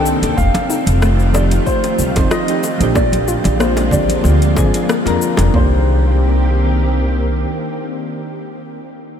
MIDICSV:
0, 0, Header, 1, 7, 480
1, 0, Start_track
1, 0, Tempo, 645161
1, 280, Time_signature, 4, 2, 24, 8
1, 6844, End_track
2, 0, Start_track
2, 0, Title_t, "Grand piano"
2, 0, Program_c, 0, 0
2, 0, Note_on_c, 0, 79, 109
2, 276, Note_on_c, 0, 77, 104
2, 294, Note_off_c, 0, 79, 0
2, 997, Note_on_c, 0, 74, 95
2, 1020, Note_off_c, 0, 77, 0
2, 1051, Note_off_c, 0, 74, 0
2, 1237, Note_on_c, 0, 72, 93
2, 1716, Note_on_c, 0, 75, 102
2, 1733, Note_off_c, 0, 72, 0
2, 2197, Note_on_c, 0, 74, 106
2, 2213, Note_off_c, 0, 75, 0
2, 2678, Note_on_c, 0, 72, 93
2, 2693, Note_off_c, 0, 74, 0
2, 2916, Note_on_c, 0, 74, 85
2, 2926, Note_off_c, 0, 72, 0
2, 3848, Note_off_c, 0, 74, 0
2, 4131, Note_on_c, 0, 72, 87
2, 6400, Note_off_c, 0, 72, 0
2, 6844, End_track
3, 0, Start_track
3, 0, Title_t, "Synth keys"
3, 0, Program_c, 1, 88
3, 0, Note_on_c, 1, 51, 99
3, 0, Note_on_c, 1, 58, 89
3, 0, Note_on_c, 1, 60, 83
3, 0, Note_on_c, 1, 62, 86
3, 0, Note_on_c, 1, 69, 103
3, 262, Note_off_c, 1, 51, 0
3, 265, Note_off_c, 1, 58, 0
3, 267, Note_off_c, 1, 60, 0
3, 270, Note_off_c, 1, 62, 0
3, 273, Note_off_c, 1, 69, 0
3, 979, Note_on_c, 1, 53, 73
3, 990, Note_on_c, 1, 57, 64
3, 1001, Note_on_c, 1, 60, 63
3, 1011, Note_on_c, 1, 63, 65
3, 1021, Note_on_c, 1, 67, 80
3, 1566, Note_off_c, 1, 53, 0
3, 1571, Note_off_c, 1, 57, 0
3, 1577, Note_off_c, 1, 60, 0
3, 1582, Note_off_c, 1, 63, 0
3, 1587, Note_off_c, 1, 67, 0
3, 1598, Note_on_c, 1, 53, 93
3, 1604, Note_on_c, 1, 57, 86
3, 1609, Note_on_c, 1, 60, 89
3, 1614, Note_on_c, 1, 63, 84
3, 1619, Note_on_c, 1, 72, 98
3, 1812, Note_off_c, 1, 53, 0
3, 1815, Note_off_c, 1, 57, 0
3, 1817, Note_off_c, 1, 60, 0
3, 1820, Note_off_c, 1, 63, 0
3, 1823, Note_off_c, 1, 72, 0
3, 1837, Note_on_c, 1, 53, 80
3, 1843, Note_on_c, 1, 57, 74
3, 1848, Note_on_c, 1, 60, 79
3, 1853, Note_on_c, 1, 63, 79
3, 1859, Note_on_c, 1, 67, 88
3, 1928, Note_off_c, 1, 53, 0
3, 1931, Note_off_c, 1, 57, 0
3, 1933, Note_off_c, 1, 60, 0
3, 1936, Note_off_c, 1, 63, 0
3, 1939, Note_off_c, 1, 67, 0
3, 2066, Note_on_c, 1, 53, 97
3, 2077, Note_on_c, 1, 58, 89
3, 2088, Note_on_c, 1, 60, 82
3, 2097, Note_on_c, 1, 62, 89
3, 2109, Note_on_c, 1, 67, 106
3, 2882, Note_off_c, 1, 53, 0
3, 2888, Note_off_c, 1, 58, 0
3, 2894, Note_off_c, 1, 60, 0
3, 2898, Note_off_c, 1, 62, 0
3, 2904, Note_off_c, 1, 67, 0
3, 2910, Note_on_c, 1, 53, 91
3, 2914, Note_on_c, 1, 58, 78
3, 2920, Note_on_c, 1, 60, 83
3, 2925, Note_on_c, 1, 62, 87
3, 2930, Note_on_c, 1, 67, 104
3, 3368, Note_off_c, 1, 53, 0
3, 3370, Note_off_c, 1, 58, 0
3, 3373, Note_off_c, 1, 60, 0
3, 3375, Note_off_c, 1, 62, 0
3, 3378, Note_off_c, 1, 67, 0
3, 3390, Note_on_c, 1, 53, 99
3, 3396, Note_on_c, 1, 58, 97
3, 3400, Note_on_c, 1, 60, 95
3, 3405, Note_on_c, 1, 62, 88
3, 3410, Note_on_c, 1, 68, 115
3, 3491, Note_off_c, 1, 53, 0
3, 3494, Note_off_c, 1, 58, 0
3, 3496, Note_off_c, 1, 60, 0
3, 3499, Note_off_c, 1, 62, 0
3, 3501, Note_off_c, 1, 68, 0
3, 3517, Note_on_c, 1, 53, 85
3, 3522, Note_on_c, 1, 58, 77
3, 3526, Note_on_c, 1, 60, 79
3, 3532, Note_on_c, 1, 62, 76
3, 3538, Note_on_c, 1, 68, 93
3, 3662, Note_off_c, 1, 53, 0
3, 3665, Note_off_c, 1, 58, 0
3, 3667, Note_off_c, 1, 60, 0
3, 3670, Note_off_c, 1, 62, 0
3, 3673, Note_off_c, 1, 68, 0
3, 3757, Note_on_c, 1, 53, 95
3, 3761, Note_on_c, 1, 58, 87
3, 3767, Note_on_c, 1, 60, 88
3, 3773, Note_on_c, 1, 62, 90
3, 3776, Note_on_c, 1, 70, 110
3, 4089, Note_on_c, 1, 51, 81
3, 4095, Note_off_c, 1, 58, 0
3, 4101, Note_off_c, 1, 53, 0
3, 4104, Note_on_c, 1, 58, 76
3, 4107, Note_off_c, 1, 60, 0
3, 4110, Note_off_c, 1, 62, 0
3, 4111, Note_off_c, 1, 70, 0
3, 4119, Note_on_c, 1, 60, 70
3, 4136, Note_on_c, 1, 62, 74
3, 4150, Note_on_c, 1, 67, 87
3, 6358, Note_off_c, 1, 51, 0
3, 6373, Note_off_c, 1, 58, 0
3, 6388, Note_off_c, 1, 60, 0
3, 6405, Note_off_c, 1, 62, 0
3, 6419, Note_off_c, 1, 67, 0
3, 6844, End_track
4, 0, Start_track
4, 0, Title_t, "String machine"
4, 0, Program_c, 2, 50
4, 0, Note_on_c, 2, 48, 71
4, 0, Note_on_c, 2, 58, 68
4, 0, Note_on_c, 2, 60, 69
4, 0, Note_on_c, 2, 69, 86
4, 251, Note_off_c, 2, 48, 0
4, 252, Note_off_c, 2, 58, 0
4, 262, Note_off_c, 2, 69, 0
4, 276, Note_on_c, 2, 57, 73
4, 277, Note_on_c, 2, 51, 82
4, 278, Note_on_c, 2, 65, 89
4, 2172, Note_off_c, 2, 60, 0
4, 2179, Note_off_c, 2, 51, 0
4, 2179, Note_off_c, 2, 57, 0
4, 2180, Note_off_c, 2, 65, 0
4, 2196, Note_on_c, 2, 65, 91
4, 2197, Note_on_c, 2, 50, 72
4, 2197, Note_on_c, 2, 58, 73
4, 2198, Note_on_c, 2, 56, 72
4, 4099, Note_off_c, 2, 50, 0
4, 4099, Note_off_c, 2, 58, 0
4, 4099, Note_off_c, 2, 65, 0
4, 4100, Note_off_c, 2, 56, 0
4, 4120, Note_on_c, 2, 58, 69
4, 4120, Note_on_c, 2, 60, 70
4, 4120, Note_on_c, 2, 67, 92
4, 4122, Note_on_c, 2, 51, 78
4, 6389, Note_off_c, 2, 58, 0
4, 6389, Note_off_c, 2, 60, 0
4, 6389, Note_off_c, 2, 67, 0
4, 6391, Note_off_c, 2, 51, 0
4, 6844, End_track
5, 0, Start_track
5, 0, Title_t, "Synth arpeggio sound"
5, 0, Program_c, 3, 84
5, 280, Note_on_c, 3, 57, 87
5, 509, Note_off_c, 3, 57, 0
5, 521, Note_on_c, 3, 63, 100
5, 749, Note_off_c, 3, 63, 0
5, 759, Note_on_c, 3, 57, 107
5, 977, Note_off_c, 3, 57, 0
5, 1720, Note_on_c, 3, 65, 103
5, 1937, Note_off_c, 3, 65, 0
5, 2199, Note_on_c, 3, 58, 82
5, 2428, Note_off_c, 3, 58, 0
5, 2440, Note_on_c, 3, 65, 104
5, 2669, Note_off_c, 3, 65, 0
5, 2679, Note_on_c, 3, 58, 100
5, 2897, Note_off_c, 3, 58, 0
5, 3640, Note_on_c, 3, 58, 105
5, 3857, Note_off_c, 3, 58, 0
5, 4120, Note_on_c, 3, 58, 91
5, 4343, Note_off_c, 3, 58, 0
5, 6844, End_track
6, 0, Start_track
6, 0, Title_t, "Upright bass"
6, 0, Program_c, 4, 32
6, 0, Note_on_c, 4, 36, 102
6, 88, Note_off_c, 4, 36, 0
6, 167, Note_on_c, 4, 39, 85
6, 237, Note_off_c, 4, 39, 0
6, 280, Note_on_c, 4, 29, 97
6, 358, Note_off_c, 4, 29, 0
6, 646, Note_on_c, 4, 29, 105
6, 1170, Note_off_c, 4, 29, 0
6, 1479, Note_on_c, 4, 36, 89
6, 1558, Note_off_c, 4, 36, 0
6, 1607, Note_on_c, 4, 29, 88
6, 1677, Note_off_c, 4, 29, 0
6, 2087, Note_on_c, 4, 34, 95
6, 2489, Note_off_c, 4, 34, 0
6, 2568, Note_on_c, 4, 34, 102
6, 3091, Note_off_c, 4, 34, 0
6, 3157, Note_on_c, 4, 38, 83
6, 3401, Note_on_c, 4, 32, 90
6, 3412, Note_off_c, 4, 38, 0
6, 3478, Note_off_c, 4, 32, 0
6, 3766, Note_on_c, 4, 41, 93
6, 3836, Note_off_c, 4, 41, 0
6, 4005, Note_on_c, 4, 29, 93
6, 4076, Note_off_c, 4, 29, 0
6, 4121, Note_on_c, 4, 36, 98
6, 5531, Note_off_c, 4, 36, 0
6, 6844, End_track
7, 0, Start_track
7, 0, Title_t, "Drums"
7, 43, Note_on_c, 9, 69, 84
7, 118, Note_off_c, 9, 69, 0
7, 170, Note_on_c, 9, 42, 55
7, 170, Note_on_c, 9, 69, 32
7, 174, Note_on_c, 9, 60, 51
7, 245, Note_off_c, 9, 42, 0
7, 245, Note_off_c, 9, 69, 0
7, 249, Note_off_c, 9, 60, 0
7, 281, Note_on_c, 9, 36, 109
7, 284, Note_on_c, 9, 69, 45
7, 355, Note_off_c, 9, 36, 0
7, 358, Note_off_c, 9, 69, 0
7, 404, Note_on_c, 9, 63, 92
7, 407, Note_on_c, 9, 60, 82
7, 409, Note_on_c, 9, 42, 46
7, 409, Note_on_c, 9, 69, 21
7, 479, Note_off_c, 9, 63, 0
7, 481, Note_off_c, 9, 60, 0
7, 483, Note_off_c, 9, 42, 0
7, 483, Note_off_c, 9, 69, 0
7, 522, Note_on_c, 9, 69, 76
7, 596, Note_off_c, 9, 69, 0
7, 643, Note_on_c, 9, 63, 67
7, 648, Note_on_c, 9, 42, 61
7, 648, Note_on_c, 9, 69, 33
7, 717, Note_off_c, 9, 63, 0
7, 722, Note_off_c, 9, 42, 0
7, 723, Note_off_c, 9, 69, 0
7, 761, Note_on_c, 9, 37, 103
7, 761, Note_on_c, 9, 60, 50
7, 761, Note_on_c, 9, 69, 44
7, 836, Note_off_c, 9, 37, 0
7, 836, Note_off_c, 9, 60, 0
7, 836, Note_off_c, 9, 69, 0
7, 889, Note_on_c, 9, 69, 20
7, 963, Note_off_c, 9, 69, 0
7, 1000, Note_on_c, 9, 69, 73
7, 1001, Note_on_c, 9, 60, 79
7, 1075, Note_off_c, 9, 69, 0
7, 1076, Note_off_c, 9, 60, 0
7, 1127, Note_on_c, 9, 42, 52
7, 1127, Note_on_c, 9, 69, 29
7, 1201, Note_off_c, 9, 42, 0
7, 1201, Note_off_c, 9, 69, 0
7, 1240, Note_on_c, 9, 69, 40
7, 1241, Note_on_c, 9, 36, 57
7, 1314, Note_off_c, 9, 69, 0
7, 1315, Note_off_c, 9, 36, 0
7, 1367, Note_on_c, 9, 42, 32
7, 1368, Note_on_c, 9, 69, 20
7, 1370, Note_on_c, 9, 60, 58
7, 1442, Note_off_c, 9, 42, 0
7, 1442, Note_off_c, 9, 69, 0
7, 1444, Note_off_c, 9, 60, 0
7, 1479, Note_on_c, 9, 69, 76
7, 1554, Note_off_c, 9, 69, 0
7, 1607, Note_on_c, 9, 36, 104
7, 1607, Note_on_c, 9, 42, 57
7, 1607, Note_on_c, 9, 69, 31
7, 1611, Note_on_c, 9, 60, 75
7, 1682, Note_off_c, 9, 36, 0
7, 1682, Note_off_c, 9, 42, 0
7, 1682, Note_off_c, 9, 69, 0
7, 1685, Note_off_c, 9, 60, 0
7, 1720, Note_on_c, 9, 37, 105
7, 1721, Note_on_c, 9, 69, 47
7, 1795, Note_off_c, 9, 37, 0
7, 1795, Note_off_c, 9, 69, 0
7, 1847, Note_on_c, 9, 42, 45
7, 1848, Note_on_c, 9, 69, 21
7, 1922, Note_off_c, 9, 42, 0
7, 1922, Note_off_c, 9, 69, 0
7, 1960, Note_on_c, 9, 69, 78
7, 1962, Note_on_c, 9, 60, 49
7, 2035, Note_off_c, 9, 69, 0
7, 2036, Note_off_c, 9, 60, 0
7, 2088, Note_on_c, 9, 42, 56
7, 2088, Note_on_c, 9, 69, 32
7, 2162, Note_off_c, 9, 42, 0
7, 2162, Note_off_c, 9, 69, 0
7, 2197, Note_on_c, 9, 60, 77
7, 2201, Note_on_c, 9, 36, 109
7, 2202, Note_on_c, 9, 69, 44
7, 2272, Note_off_c, 9, 60, 0
7, 2275, Note_off_c, 9, 36, 0
7, 2277, Note_off_c, 9, 69, 0
7, 2323, Note_on_c, 9, 63, 82
7, 2329, Note_on_c, 9, 42, 48
7, 2329, Note_on_c, 9, 69, 21
7, 2397, Note_off_c, 9, 63, 0
7, 2403, Note_off_c, 9, 42, 0
7, 2404, Note_off_c, 9, 69, 0
7, 2441, Note_on_c, 9, 69, 76
7, 2515, Note_off_c, 9, 69, 0
7, 2561, Note_on_c, 9, 60, 59
7, 2568, Note_on_c, 9, 42, 59
7, 2568, Note_on_c, 9, 63, 67
7, 2568, Note_on_c, 9, 69, 32
7, 2636, Note_off_c, 9, 60, 0
7, 2642, Note_off_c, 9, 42, 0
7, 2642, Note_off_c, 9, 69, 0
7, 2643, Note_off_c, 9, 63, 0
7, 2681, Note_on_c, 9, 37, 109
7, 2681, Note_on_c, 9, 69, 47
7, 2755, Note_off_c, 9, 37, 0
7, 2756, Note_off_c, 9, 69, 0
7, 2803, Note_on_c, 9, 60, 82
7, 2808, Note_on_c, 9, 42, 35
7, 2808, Note_on_c, 9, 69, 21
7, 2877, Note_off_c, 9, 60, 0
7, 2882, Note_off_c, 9, 42, 0
7, 2882, Note_off_c, 9, 69, 0
7, 2911, Note_on_c, 9, 64, 84
7, 2920, Note_on_c, 9, 36, 55
7, 2922, Note_on_c, 9, 69, 77
7, 2985, Note_off_c, 9, 64, 0
7, 2995, Note_off_c, 9, 36, 0
7, 2996, Note_off_c, 9, 69, 0
7, 3042, Note_on_c, 9, 63, 72
7, 3048, Note_on_c, 9, 42, 55
7, 3048, Note_on_c, 9, 69, 32
7, 3116, Note_off_c, 9, 63, 0
7, 3122, Note_off_c, 9, 42, 0
7, 3122, Note_off_c, 9, 69, 0
7, 3154, Note_on_c, 9, 60, 61
7, 3161, Note_on_c, 9, 69, 37
7, 3228, Note_off_c, 9, 60, 0
7, 3235, Note_off_c, 9, 69, 0
7, 3289, Note_on_c, 9, 42, 30
7, 3289, Note_on_c, 9, 69, 20
7, 3363, Note_off_c, 9, 42, 0
7, 3363, Note_off_c, 9, 69, 0
7, 3396, Note_on_c, 9, 60, 84
7, 3400, Note_on_c, 9, 36, 101
7, 3402, Note_on_c, 9, 69, 77
7, 3471, Note_off_c, 9, 60, 0
7, 3475, Note_off_c, 9, 36, 0
7, 3476, Note_off_c, 9, 69, 0
7, 3528, Note_on_c, 9, 42, 56
7, 3528, Note_on_c, 9, 69, 32
7, 3602, Note_off_c, 9, 42, 0
7, 3602, Note_off_c, 9, 69, 0
7, 3642, Note_on_c, 9, 37, 108
7, 3642, Note_on_c, 9, 69, 47
7, 3716, Note_off_c, 9, 37, 0
7, 3716, Note_off_c, 9, 69, 0
7, 3763, Note_on_c, 9, 60, 55
7, 3770, Note_on_c, 9, 42, 45
7, 3770, Note_on_c, 9, 69, 20
7, 3838, Note_off_c, 9, 60, 0
7, 3844, Note_off_c, 9, 42, 0
7, 3844, Note_off_c, 9, 69, 0
7, 3881, Note_on_c, 9, 69, 82
7, 3956, Note_off_c, 9, 69, 0
7, 3997, Note_on_c, 9, 60, 91
7, 4008, Note_on_c, 9, 42, 60
7, 4008, Note_on_c, 9, 69, 34
7, 4072, Note_off_c, 9, 60, 0
7, 4082, Note_off_c, 9, 42, 0
7, 4082, Note_off_c, 9, 69, 0
7, 4121, Note_on_c, 9, 36, 100
7, 4121, Note_on_c, 9, 43, 103
7, 4195, Note_off_c, 9, 36, 0
7, 4196, Note_off_c, 9, 43, 0
7, 6844, End_track
0, 0, End_of_file